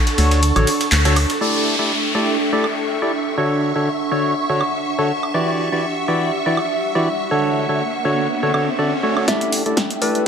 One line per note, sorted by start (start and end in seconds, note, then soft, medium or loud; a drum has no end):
0.00 10.28 D4 medium
0.00 1.42 A4 medium
0.00 1.41 F#5 medium
0.00 1.42 A5 medium
0.00 2.10 C#6 medium
0.07 snare loud
0.07 closed hi-hat soft
0.07 ride medium
0.18 0.52 D2 loud
0.18 0.41 D3 medium
0.18 0.41 D4 medium
0.18 0.41 F#4 medium
0.18 0.41 A4 medium
0.18 0.41 C#5 loud
0.18 snare loud
0.18 open hi-hat medium
0.18 ride medium
0.31 snare loud
0.31 closed hi-hat soft
0.31 ride medium
0.43 closed hi-hat medium
0.43 ride medium
0.56 0.65 A1 medium
0.56 0.69 D3 medium
0.56 0.69 D4 medium
0.56 0.69 F#4 medium
0.56 0.69 A4 medium
0.56 0.69 C#5 loud
0.56 closed hi-hat soft
0.56 high woodblock medium
0.67 snare loud
0.67 open hi-hat loud
0.67 ride medium
0.81 snare loud
0.81 closed hi-hat soft
0.81 ride medium
0.92 1.26 D2 medium
0.92 snare loud
0.92 clap loud
0.92 closed hi-hat medium
0.92 ride medium
1.05 1.18 D3 medium
1.05 1.18 D4 medium
1.05 1.18 F#4 medium
1.05 1.18 A4 medium
1.05 1.18 C#5 loud
1.05 snare loud
1.05 closed hi-hat soft
1.05 ride medium
1.16 snare loud
1.16 open hi-hat medium
1.16 ride medium
1.16 high woodblock medium
1.30 snare loud
1.30 closed hi-hat soft
1.30 ride medium
1.41 1.76 A3 medium
1.41 1.76 E4 medium
1.41 1.76 G4 medium
1.41 1.76 A4 medium
1.41 1.76 D5 loud
1.41 9.27 E5 medium
1.41 9.29 C#6 medium
1.41 downlifter medium
1.63 4.03 A4 medium
1.79 1.92 A3 medium
1.79 1.92 E4 medium
1.79 1.92 G4 medium
1.79 1.92 A4 medium
1.79 1.92 D5 medium
1.90 3.13 G5 medium
2.15 2.37 A3 medium
2.15 2.37 E4 medium
2.15 2.37 G4 medium
2.15 2.37 A4 medium
2.15 2.37 D5 medium
2.53 2.66 A3 medium
2.53 2.66 E4 medium
2.53 2.66 G4 medium
2.53 2.66 A4 medium
2.53 2.66 D5 loud
2.64 high woodblock medium
3.02 3.12 E4 medium
3.02 3.12 G4 medium
3.02 3.12 A4 medium
3.02 3.12 D5 medium
3.29 9.28 F#5 medium
3.38 3.73 D3 medium
3.38 3.72 D4 medium
3.38 3.72 F#4 medium
3.38 3.72 A4 medium
3.38 3.72 C#5 loud
3.49 6.14 C#6 medium
3.76 3.89 D3 medium
3.76 3.89 D4 medium
3.76 3.89 F#4 medium
3.76 3.89 A4 medium
3.76 3.89 C#5 medium
4.11 4.34 D3 medium
4.11 4.34 D4 medium
4.11 4.34 F#4 medium
4.11 4.34 A4 medium
4.11 4.34 C#5 loud
4.49 4.62 D3 medium
4.49 4.62 D4 medium
4.49 4.62 F#4 medium
4.49 4.62 A4 medium
4.49 4.62 C#5 loud
4.61 high woodblock medium
4.99 5.12 D3 medium
4.99 5.12 D4 medium
4.99 5.12 F#4 medium
4.99 5.12 A4 medium
4.99 5.12 C#5 loud
5.23 high woodblock medium
5.34 5.69 E3 medium
5.34 5.69 E4 medium
5.34 5.69 F#4 medium
5.34 5.69 G4 medium
5.34 5.69 D5 loud
5.34 riser medium
5.61 7.31 G4 medium
5.72 5.85 E3 medium
5.72 5.85 E4 medium
5.72 5.85 F#4 medium
5.72 5.85 G4 medium
5.72 5.85 D5 medium
5.86 8.10 E5 medium
6.08 6.31 E3 medium
6.08 6.31 E4 medium
6.08 6.31 F#4 medium
6.08 6.31 G4 medium
6.08 6.31 D5 medium
6.46 6.59 E3 medium
6.46 6.59 E4 medium
6.46 6.59 F#4 medium
6.46 6.59 G4 medium
6.46 6.59 D5 loud
6.57 high woodblock medium
6.95 7.08 E3 medium
6.95 7.08 E4 medium
6.95 7.08 F#4 medium
6.95 7.08 G4 medium
6.95 7.08 D5 loud
7.31 7.66 D3 medium
7.31 7.66 D4 medium
7.31 7.66 F#4 medium
7.31 7.66 A4 medium
7.31 7.66 C#5 loud
7.69 7.82 D3 medium
7.69 7.82 D4 medium
7.69 7.82 F#4 medium
7.69 7.82 A4 medium
7.69 7.82 C#5 medium
8.05 8.27 D3 medium
8.05 8.27 D4 medium
8.05 8.27 F#4 medium
8.05 8.27 A4 medium
8.05 8.27 C#5 loud
8.43 8.52 D3 medium
8.43 8.52 D4 medium
8.43 8.52 F#4 medium
8.43 8.52 A4 medium
8.43 8.52 C#5 loud
8.54 8.69 D3 medium
8.54 8.69 D4 medium
8.54 8.69 F#4 medium
8.54 8.69 A4 medium
8.54 8.69 C#5 medium
8.54 high woodblock medium
8.79 8.94 D3 medium
8.79 8.94 D4 medium
8.79 8.94 F#4 medium
8.79 8.94 A4 medium
8.79 8.94 D5 medium
9.03 9.15 A3 medium
9.03 9.15 D4 medium
9.03 9.15 F#4 medium
9.03 9.15 A4 medium
9.03 9.15 C#5 medium
9.17 9.26 A3 medium
9.17 9.26 D4 medium
9.17 9.26 F#4 medium
9.17 9.26 A4 medium
9.17 9.26 C#5 medium
9.17 high woodblock medium
9.28 9.62 A1 loud
9.28 9.63 A3 medium
9.28 9.63 E4 medium
9.28 9.63 G4 medium
9.28 9.63 A4 medium
9.28 9.63 D5 loud
9.28 10.28 E5 medium
9.28 9.48 E5 medium
9.28 10.28 E6 medium
9.28 kick loud
9.28 snare soft
9.28 closed hi-hat medium
9.28 riser medium
9.38 10.28 G5 medium
9.38 closed hi-hat soft
9.47 10.28 A4 medium
9.52 open hi-hat loud
9.66 9.75 E1 medium
9.66 9.79 A3 medium
9.66 9.79 E4 medium
9.66 9.79 G4 medium
9.66 9.79 A4 medium
9.66 9.79 D5 medium
9.66 closed hi-hat soft
9.77 kick loud
9.77 snare soft
9.77 closed hi-hat medium
9.91 closed hi-hat soft
10.02 10.28 A1 medium
10.02 10.24 A3 medium
10.02 10.24 E4 medium
10.02 10.24 G4 medium
10.02 10.24 A4 medium
10.02 10.22 B4 medium
10.02 10.24 D5 loud
10.02 open hi-hat medium
10.15 closed hi-hat soft